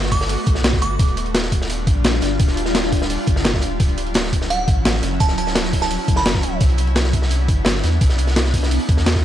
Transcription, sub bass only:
0.00 0.37 G1 loud
0.47 0.80 B1 loud
0.82 0.98 G1 medium
0.99 1.89 D#1 loud
1.87 2.21 A#1 loud
2.22 2.38 G1 medium
2.40 3.17 D#1 loud
3.27 3.61 G1 loud
3.63 3.78 D#1 medium
3.80 4.69 D1 loud
4.68 5.01 A1 loud
5.03 5.19 F#1 medium
5.20 5.98 D1 loud
6.08 6.42 F#1 loud
6.43 6.59 D1 loud
6.61 7.50 C2 loud
7.49 7.82 G1 loud
7.84 7.99 E2 medium
8.01 8.79 C2 loud
8.89 9.25 E2 loud

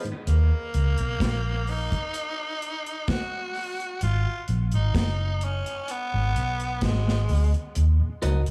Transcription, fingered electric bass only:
0.27 0.50 D#2 loud
0.74 0.97 C#2 medium
0.99 1.20 B1 medium
1.21 1.88 A#1 medium
4.03 4.25 G#1 loud
4.49 4.71 A#1 medium
4.74 4.94 G#1 medium
4.95 5.62 F#1 medium
6.14 6.34 G#1 medium
6.37 6.80 B1 medium
6.83 7.26 G#1 medium
7.30 7.52 D2 medium
7.76 7.99 D#2 medium
8.23 8.46 C#2 medium
8.48 8.51 B1 medium

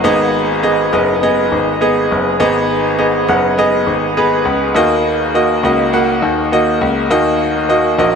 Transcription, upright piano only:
0.04 0.89 G#2 medium
0.04 0.51 B3 loud
0.04 0.52 G#4 medium
0.04 0.52 D#5 loud
0.63 0.87 B3 medium
0.63 0.87 G#4 medium
0.63 0.87 D#5 medium
0.93 1.16 B3 medium
0.93 1.16 G#4 medium
0.93 1.16 D#5 medium
1.23 1.70 B3 medium
1.23 1.70 G#4 medium
1.23 1.70 D#5 medium
1.81 2.28 B3 medium
1.81 2.28 G#4 medium
1.81 2.29 D#5 medium
2.40 3.24 G#2 medium
2.40 2.87 B3 loud
2.40 2.87 G#4 medium
2.40 2.87 D#5 medium
2.98 3.22 B3 medium
2.98 3.22 G#4 medium
2.98 3.22 D#5 medium
3.28 3.52 B3 medium
3.28 3.52 G#4 medium
3.28 3.52 F#5 medium
3.58 4.05 B3 medium
3.58 4.05 G#4 medium
3.58 4.05 D#5 medium
4.17 4.64 B3 medium
4.17 4.64 G#4 medium
4.17 4.64 B4 medium
4.75 5.59 D#3 medium
4.75 5.23 A#3 medium
4.75 5.23 F#4 medium
4.75 5.23 D#5 medium
5.34 5.58 A#3 medium
5.34 5.58 F#4 medium
5.34 5.58 D#5 medium
5.64 5.87 A#3 medium
5.64 5.87 F#4 medium
5.64 5.88 D#5 medium
5.93 6.40 A#3 medium
5.93 6.40 F#4 medium
5.93 6.40 F#5 medium
6.52 6.99 A#3 medium
6.52 6.99 F#4 medium
6.52 6.99 D#5 medium
7.10 7.95 D#3 medium
7.10 7.58 A#3 medium
7.10 7.58 F#4 medium
7.10 7.58 D#5 loud
7.69 7.93 A#3 medium
7.69 7.93 F#4 medium
7.69 7.93 D#5 medium
7.99 8.15 A#3 medium
7.99 8.15 F#4 medium
7.99 8.15 D#5 medium

